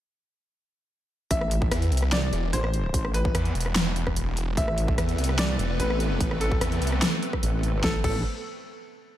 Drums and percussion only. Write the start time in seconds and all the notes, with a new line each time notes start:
1.31 kick, closed hi-hat
1.41 cross-stick
1.51 closed hi-hat
1.62 kick
1.72 cross-stick, closed hi-hat
1.82 closed hi-hat
1.92 closed hi-hat
1.97 closed hi-hat
2.03 cross-stick
2.12 snare, closed hi-hat
2.33 closed hi-hat
2.53 closed hi-hat
2.64 cross-stick
2.74 closed hi-hat
2.94 kick, closed hi-hat
3.05 cross-stick
3.14 closed hi-hat
3.25 kick
3.35 cross-stick, closed hi-hat
3.45 closed hi-hat
3.55 closed hi-hat
3.61 closed hi-hat
3.66 cross-stick
3.76 snare, closed hi-hat
3.96 closed hi-hat
4.07 kick, cross-stick
4.16 closed hi-hat
4.37 closed hi-hat
4.57 kick, closed hi-hat
4.68 cross-stick
4.78 closed hi-hat
4.88 kick
4.98 cross-stick, closed hi-hat
5.09 closed hi-hat
5.18 closed hi-hat
5.24 closed hi-hat
5.29 cross-stick
5.39 snare, closed hi-hat
5.59 closed hi-hat
5.80 closed hi-hat
5.90 cross-stick
6.00 closed hi-hat
6.21 kick, closed hi-hat
6.31 cross-stick
6.41 closed hi-hat
6.52 kick
6.61 cross-stick, closed hi-hat
6.72 closed hi-hat
6.82 closed hi-hat
6.87 closed hi-hat
6.92 cross-stick
7.02 snare, closed hi-hat
7.23 closed hi-hat
7.33 kick, cross-stick
7.43 closed hi-hat
7.63 closed hi-hat
7.84 kick, snare
8.04 kick, crash